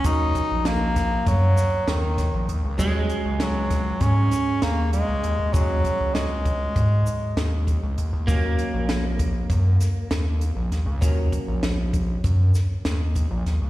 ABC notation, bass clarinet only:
X:1
M:9/8
L:1/8
Q:3/8=66
K:Ebm
V:1 name="Bass clarinet" clef=bass
E2 B,2 G,2 E,2 z | z2 G,2 D2 B, A,2 | G,2 A,6 z | z8 z |
z8 z |]